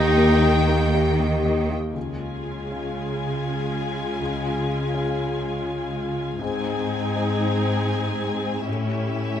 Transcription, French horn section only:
0, 0, Header, 1, 2, 480
1, 0, Start_track
1, 0, Tempo, 765306
1, 1226, Time_signature, 3, 2, 24, 8
1, 1226, Tempo, 742574
1, 4586, Tempo, 762389
1, 6001, End_track
2, 0, Start_track
2, 0, Title_t, "French horn section"
2, 0, Program_c, 0, 60
2, 0, Note_on_c, 0, 58, 89
2, 0, Note_on_c, 0, 67, 82
2, 996, Note_off_c, 0, 67, 0
2, 997, Note_off_c, 0, 58, 0
2, 1215, Note_on_c, 0, 65, 39
2, 1218, Note_on_c, 0, 56, 40
2, 4079, Note_off_c, 0, 65, 0
2, 4081, Note_off_c, 0, 56, 0
2, 4099, Note_on_c, 0, 60, 56
2, 4101, Note_on_c, 0, 56, 59
2, 5513, Note_off_c, 0, 56, 0
2, 5537, Note_off_c, 0, 60, 0
2, 5539, Note_on_c, 0, 61, 40
2, 5542, Note_on_c, 0, 57, 39
2, 6001, Note_off_c, 0, 57, 0
2, 6001, Note_off_c, 0, 61, 0
2, 6001, End_track
0, 0, End_of_file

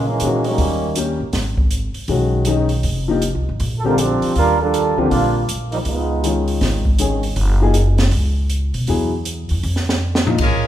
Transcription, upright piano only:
0, 0, Header, 1, 2, 480
1, 0, Start_track
1, 0, Tempo, 377358
1, 1710, Time_signature, 4, 2, 24, 8
1, 13574, End_track
2, 0, Start_track
2, 0, Title_t, "Upright piano"
2, 0, Program_c, 0, 0
2, 292, Note_on_c, 0, 51, 55
2, 294, Note_on_c, 0, 56, 47
2, 302, Note_on_c, 0, 61, 49
2, 319, Note_on_c, 0, 66, 62
2, 761, Note_off_c, 0, 51, 0
2, 762, Note_off_c, 0, 56, 0
2, 766, Note_off_c, 0, 61, 0
2, 774, Note_off_c, 0, 66, 0
2, 1222, Note_on_c, 0, 55, 56
2, 1235, Note_on_c, 0, 58, 57
2, 1235, Note_on_c, 0, 61, 56
2, 1242, Note_on_c, 0, 67, 68
2, 1501, Note_off_c, 0, 55, 0
2, 1508, Note_off_c, 0, 58, 0
2, 1508, Note_off_c, 0, 61, 0
2, 1511, Note_off_c, 0, 67, 0
2, 2655, Note_on_c, 0, 51, 54
2, 2660, Note_on_c, 0, 56, 54
2, 2670, Note_on_c, 0, 61, 54
2, 2678, Note_on_c, 0, 66, 67
2, 3119, Note_off_c, 0, 51, 0
2, 3125, Note_off_c, 0, 56, 0
2, 3132, Note_off_c, 0, 61, 0
2, 3136, Note_off_c, 0, 66, 0
2, 3139, Note_on_c, 0, 51, 60
2, 3144, Note_on_c, 0, 56, 55
2, 3152, Note_on_c, 0, 61, 56
2, 3165, Note_on_c, 0, 63, 64
2, 3419, Note_off_c, 0, 51, 0
2, 3422, Note_off_c, 0, 56, 0
2, 3426, Note_off_c, 0, 61, 0
2, 3432, Note_off_c, 0, 63, 0
2, 3917, Note_on_c, 0, 53, 70
2, 3925, Note_on_c, 0, 58, 60
2, 3937, Note_on_c, 0, 63, 60
2, 3950, Note_on_c, 0, 67, 76
2, 4083, Note_off_c, 0, 53, 0
2, 4087, Note_off_c, 0, 58, 0
2, 4093, Note_off_c, 0, 63, 0
2, 4099, Note_off_c, 0, 67, 0
2, 4883, Note_on_c, 0, 50, 66
2, 4890, Note_on_c, 0, 55, 59
2, 4897, Note_on_c, 0, 60, 65
2, 4905, Note_on_c, 0, 67, 74
2, 5045, Note_off_c, 0, 50, 0
2, 5049, Note_off_c, 0, 55, 0
2, 5052, Note_off_c, 0, 60, 0
2, 5057, Note_off_c, 0, 67, 0
2, 6322, Note_on_c, 0, 50, 62
2, 6327, Note_on_c, 0, 55, 59
2, 6342, Note_on_c, 0, 60, 62
2, 6346, Note_on_c, 0, 65, 71
2, 6485, Note_off_c, 0, 50, 0
2, 6487, Note_off_c, 0, 55, 0
2, 6495, Note_off_c, 0, 60, 0
2, 6497, Note_off_c, 0, 65, 0
2, 7933, Note_on_c, 0, 56, 49
2, 7938, Note_on_c, 0, 51, 57
2, 7946, Note_on_c, 0, 61, 47
2, 7956, Note_on_c, 0, 65, 62
2, 8664, Note_off_c, 0, 56, 0
2, 8667, Note_off_c, 0, 51, 0
2, 8671, Note_off_c, 0, 61, 0
2, 8676, Note_off_c, 0, 65, 0
2, 8891, Note_on_c, 0, 51, 52
2, 8900, Note_on_c, 0, 56, 48
2, 8910, Note_on_c, 0, 61, 49
2, 8919, Note_on_c, 0, 68, 58
2, 9174, Note_off_c, 0, 51, 0
2, 9179, Note_off_c, 0, 56, 0
2, 9184, Note_off_c, 0, 61, 0
2, 9189, Note_off_c, 0, 68, 0
2, 9685, Note_on_c, 0, 53, 64
2, 9698, Note_on_c, 0, 58, 60
2, 9698, Note_on_c, 0, 63, 64
2, 9705, Note_on_c, 0, 68, 79
2, 9845, Note_off_c, 0, 53, 0
2, 9852, Note_off_c, 0, 58, 0
2, 9852, Note_off_c, 0, 63, 0
2, 9856, Note_off_c, 0, 68, 0
2, 11293, Note_on_c, 0, 54, 54
2, 11299, Note_on_c, 0, 59, 50
2, 11305, Note_on_c, 0, 64, 51
2, 11314, Note_on_c, 0, 68, 62
2, 11575, Note_off_c, 0, 54, 0
2, 11579, Note_off_c, 0, 59, 0
2, 11581, Note_off_c, 0, 64, 0
2, 11586, Note_off_c, 0, 68, 0
2, 13050, Note_on_c, 0, 53, 71
2, 13059, Note_on_c, 0, 58, 63
2, 13066, Note_on_c, 0, 63, 63
2, 13069, Note_on_c, 0, 65, 74
2, 13210, Note_off_c, 0, 53, 0
2, 13214, Note_off_c, 0, 58, 0
2, 13217, Note_off_c, 0, 63, 0
2, 13219, Note_off_c, 0, 65, 0
2, 13574, End_track
0, 0, End_of_file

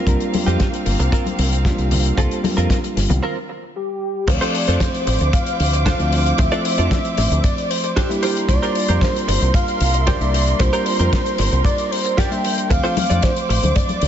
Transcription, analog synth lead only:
0, 0, Header, 1, 2, 480
1, 0, Start_track
1, 0, Key_signature, -1, "minor"
1, 0, Tempo, 526316
1, 67, Time_signature, 4, 2, 24, 8
1, 12839, End_track
2, 0, Start_track
2, 0, Title_t, "Analog synth lead"
2, 0, Program_c, 0, 81
2, 3428, Note_on_c, 0, 67, 84
2, 3905, Note_on_c, 0, 74, 99
2, 3919, Note_off_c, 0, 67, 0
2, 4382, Note_on_c, 0, 72, 96
2, 4396, Note_off_c, 0, 74, 0
2, 4856, Note_off_c, 0, 72, 0
2, 4862, Note_on_c, 0, 77, 104
2, 5310, Note_off_c, 0, 77, 0
2, 5342, Note_on_c, 0, 77, 97
2, 5824, Note_on_c, 0, 76, 109
2, 5838, Note_off_c, 0, 77, 0
2, 6780, Note_on_c, 0, 74, 101
2, 6794, Note_off_c, 0, 76, 0
2, 7022, Note_on_c, 0, 72, 96
2, 7036, Note_off_c, 0, 74, 0
2, 7264, Note_on_c, 0, 67, 91
2, 7277, Note_off_c, 0, 72, 0
2, 7735, Note_off_c, 0, 67, 0
2, 7741, Note_on_c, 0, 74, 104
2, 8218, Note_on_c, 0, 72, 101
2, 8232, Note_off_c, 0, 74, 0
2, 8702, Note_on_c, 0, 77, 111
2, 8716, Note_off_c, 0, 72, 0
2, 9127, Note_on_c, 0, 76, 77
2, 9140, Note_off_c, 0, 77, 0
2, 9182, Note_on_c, 0, 74, 103
2, 9195, Note_off_c, 0, 76, 0
2, 9665, Note_on_c, 0, 72, 115
2, 9679, Note_off_c, 0, 74, 0
2, 10620, Note_off_c, 0, 72, 0
2, 10625, Note_on_c, 0, 74, 110
2, 10863, Note_on_c, 0, 72, 101
2, 10877, Note_off_c, 0, 74, 0
2, 11107, Note_on_c, 0, 79, 108
2, 11120, Note_off_c, 0, 72, 0
2, 11581, Note_on_c, 0, 77, 112
2, 11595, Note_off_c, 0, 79, 0
2, 12067, Note_on_c, 0, 72, 109
2, 12081, Note_off_c, 0, 77, 0
2, 12542, Note_off_c, 0, 72, 0
2, 12548, Note_on_c, 0, 74, 107
2, 12839, Note_off_c, 0, 74, 0
2, 12839, End_track
0, 0, End_of_file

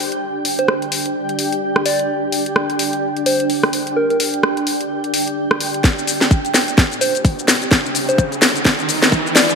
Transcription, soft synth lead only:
0, 0, Header, 1, 2, 480
1, 0, Start_track
1, 0, Tempo, 468750
1, 221, Time_signature, 4, 2, 24, 8
1, 9780, End_track
2, 0, Start_track
2, 0, Title_t, "Soft synth lead"
2, 0, Program_c, 0, 80
2, 602, Note_on_c, 0, 72, 92
2, 761, Note_off_c, 0, 72, 0
2, 1901, Note_on_c, 0, 74, 92
2, 2381, Note_off_c, 0, 74, 0
2, 3341, Note_on_c, 0, 72, 92
2, 3524, Note_off_c, 0, 72, 0
2, 4060, Note_on_c, 0, 70, 91
2, 4151, Note_off_c, 0, 70, 0
2, 4202, Note_on_c, 0, 70, 72
2, 4265, Note_off_c, 0, 70, 0
2, 7179, Note_on_c, 0, 72, 88
2, 7363, Note_off_c, 0, 72, 0
2, 8281, Note_on_c, 0, 72, 94
2, 8440, Note_off_c, 0, 72, 0
2, 9580, Note_on_c, 0, 74, 95
2, 9780, Note_off_c, 0, 74, 0
2, 9780, End_track
0, 0, End_of_file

